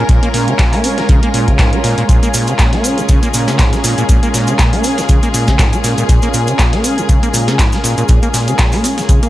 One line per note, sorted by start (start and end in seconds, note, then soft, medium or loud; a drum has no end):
0.00 9.29 G#3 medium
0.00 9.29 C#4 medium
0.00 9.29 F4 medium
0.00 2.05 A#4 medium
0.00 9.29 A#4 medium
0.00 9.29 F5 medium
0.00 9.29 G#5 medium
0.09 0.20 A#2 medium
0.09 kick loud
0.09 closed hi-hat medium
0.23 0.29 A#3 medium
0.23 closed hi-hat soft
0.34 0.49 A#2 medium
0.34 snare medium
0.34 closed hi-hat medium
0.34 open hi-hat loud
0.48 0.54 C#3 medium
0.48 closed hi-hat soft
0.59 0.74 A#2 medium
0.59 kick loud
0.59 snare loud
0.59 clap loud
0.59 closed hi-hat medium
0.73 0.85 A#3 loud
0.73 clap soft
0.73 open hi-hat medium
0.84 0.99 C#4 loud
0.84 closed hi-hat medium
0.84 open hi-hat loud
0.98 1.02 A#2 loud
0.98 snare soft
0.98 closed hi-hat soft
1.09 1.20 C#3 medium
1.09 kick loud
1.09 closed hi-hat medium
1.23 1.29 A#3 medium
1.23 closed hi-hat soft
1.34 1.49 A#2 medium
1.34 closed hi-hat medium
1.34 open hi-hat loud
1.48 1.61 C#3 medium
1.48 kick medium
1.48 closed hi-hat soft
1.59 1.74 G#2 loud
1.59 kick loud
1.59 snare loud
1.59 clap loud
1.59 closed hi-hat medium
1.73 1.79 A#3 medium
1.73 closed hi-hat soft
1.84 1.95 A#2 medium
1.84 snare soft
1.84 closed hi-hat medium
1.84 open hi-hat loud
1.98 2.04 A#2 medium
1.98 closed hi-hat soft
2.09 2.20 A#2 medium
2.09 9.29 G#4 medium
2.09 kick loud
2.09 closed hi-hat medium
2.09 cabasa soft
2.23 2.29 A#3 medium
2.23 closed hi-hat soft
2.23 cabasa soft
2.34 2.49 A#2 medium
2.34 closed hi-hat medium
2.34 open hi-hat loud
2.34 cabasa loud
2.47 2.54 C#3 medium
2.47 closed hi-hat soft
2.47 cabasa soft
2.59 2.74 A#2 medium
2.59 kick loud
2.59 snare loud
2.59 clap loud
2.59 closed hi-hat medium
2.59 cabasa soft
2.73 2.86 A#3 loud
2.73 snare soft
2.73 closed hi-hat soft
2.84 2.99 C#4 loud
2.84 closed hi-hat medium
2.84 open hi-hat loud
2.84 cabasa loud
2.98 3.02 A#2 loud
2.98 closed hi-hat soft
2.98 cabasa soft
3.09 3.20 C#3 medium
3.09 kick loud
3.09 closed hi-hat medium
3.09 cabasa medium
3.23 3.29 A#3 medium
3.23 closed hi-hat soft
3.23 cabasa soft
3.34 3.49 A#2 medium
3.34 closed hi-hat medium
3.34 open hi-hat loud
3.34 cabasa medium
3.48 3.61 C#3 medium
3.48 snare medium
3.48 closed hi-hat soft
3.48 cabasa soft
3.59 3.74 G#2 loud
3.59 kick loud
3.59 snare loud
3.59 clap loud
3.59 closed hi-hat medium
3.59 cabasa soft
3.73 3.79 A#3 medium
3.73 snare soft
3.73 closed hi-hat soft
3.73 cabasa soft
3.84 3.95 A#2 medium
3.84 snare medium
3.84 closed hi-hat medium
3.84 open hi-hat loud
3.84 cabasa medium
3.98 4.04 A#2 medium
3.98 closed hi-hat soft
3.98 cabasa soft
4.09 4.20 A#2 medium
4.09 kick loud
4.09 closed hi-hat medium
4.09 cabasa medium
4.23 4.29 A#3 medium
4.23 closed hi-hat soft
4.23 cabasa soft
4.34 4.49 A#2 medium
4.34 snare medium
4.34 closed hi-hat medium
4.34 open hi-hat loud
4.34 cabasa medium
4.47 4.54 C#3 medium
4.47 closed hi-hat soft
4.47 cabasa soft
4.59 4.74 A#2 medium
4.59 kick loud
4.59 snare loud
4.59 clap loud
4.59 closed hi-hat medium
4.59 cabasa medium
4.73 4.85 A#3 loud
4.73 open hi-hat medium
4.84 4.99 C#4 loud
4.84 closed hi-hat medium
4.84 open hi-hat loud
4.84 cabasa medium
4.98 5.02 A#2 loud
4.98 snare soft
4.98 closed hi-hat soft
4.98 cabasa soft
5.09 5.20 C#3 medium
5.09 kick loud
5.09 closed hi-hat medium
5.09 cabasa medium
5.23 5.29 A#3 medium
5.23 closed hi-hat soft
5.23 cabasa soft
5.34 5.50 A#2 medium
5.34 closed hi-hat medium
5.34 open hi-hat loud
5.34 cabasa medium
5.47 5.61 C#3 medium
5.47 kick medium
5.47 snare medium
5.47 closed hi-hat soft
5.47 cabasa soft
5.59 5.74 G#2 loud
5.59 kick loud
5.59 snare loud
5.59 clap loud
5.59 closed hi-hat medium
5.59 cabasa soft
5.73 5.79 A#3 medium
5.73 closed hi-hat soft
5.73 cabasa soft
5.84 5.95 A#2 medium
5.84 snare soft
5.84 closed hi-hat medium
5.84 open hi-hat loud
5.84 cabasa medium
5.98 6.04 A#2 medium
5.98 closed hi-hat soft
5.98 cabasa soft
6.09 6.20 A#2 medium
6.09 kick loud
6.09 closed hi-hat medium
6.09 cabasa soft
6.22 6.29 A#3 medium
6.22 closed hi-hat soft
6.22 cabasa soft
6.34 6.49 A#2 medium
6.34 closed hi-hat medium
6.34 open hi-hat loud
6.34 cabasa medium
6.47 6.54 C#3 medium
6.47 closed hi-hat soft
6.47 cabasa soft
6.59 6.74 A#2 medium
6.59 kick loud
6.59 snare loud
6.59 clap loud
6.59 closed hi-hat medium
6.59 cabasa soft
6.73 6.86 A#3 loud
6.73 snare soft
6.73 closed hi-hat soft
6.84 6.99 C#4 loud
6.84 closed hi-hat medium
6.84 open hi-hat loud
6.84 cabasa medium
6.98 7.02 A#2 loud
6.98 closed hi-hat soft
6.98 cabasa soft
7.09 7.20 C#3 medium
7.09 kick loud
7.09 closed hi-hat medium
7.09 cabasa medium
7.23 7.29 A#3 medium
7.23 closed hi-hat soft
7.23 cabasa soft
7.34 7.49 A#2 medium
7.34 closed hi-hat medium
7.34 open hi-hat loud
7.34 cabasa medium
7.48 7.61 C#3 medium
7.48 snare medium
7.48 closed hi-hat soft
7.48 cabasa soft
7.59 7.74 G#2 loud
7.59 kick loud
7.59 snare loud
7.59 clap loud
7.59 closed hi-hat medium
7.59 cabasa soft
7.72 7.79 A#3 medium
7.72 snare soft
7.72 closed hi-hat soft
7.72 cabasa soft
7.84 7.95 A#2 medium
7.84 snare soft
7.84 closed hi-hat medium
7.84 open hi-hat loud
7.84 cabasa medium
7.98 8.04 A#2 medium
7.98 closed hi-hat soft
7.98 cabasa soft
8.08 8.20 A#2 medium
8.08 kick loud
8.08 closed hi-hat medium
8.08 cabasa soft
8.23 8.29 A#3 medium
8.23 closed hi-hat soft
8.23 cabasa soft
8.34 8.49 A#2 medium
8.34 snare medium
8.34 closed hi-hat medium
8.34 open hi-hat loud
8.34 cabasa medium
8.48 8.54 C#3 medium
8.48 closed hi-hat soft
8.48 cabasa soft
8.58 8.74 A#2 medium
8.58 kick loud
8.58 snare loud
8.58 clap loud
8.58 closed hi-hat medium
8.58 cabasa medium
8.72 8.85 A#3 loud
8.72 clap soft
8.72 open hi-hat medium
8.72 cabasa soft
8.84 8.99 C#4 loud
8.84 snare soft
8.84 closed hi-hat medium
8.84 open hi-hat loud
8.84 cabasa loud
8.98 9.02 A#2 loud
8.98 snare soft
8.98 closed hi-hat soft
8.98 cabasa soft
9.09 9.20 C#3 medium
9.09 kick loud
9.09 closed hi-hat medium
9.09 cabasa medium
9.23 9.29 A#3 medium
9.23 closed hi-hat soft
9.23 cabasa soft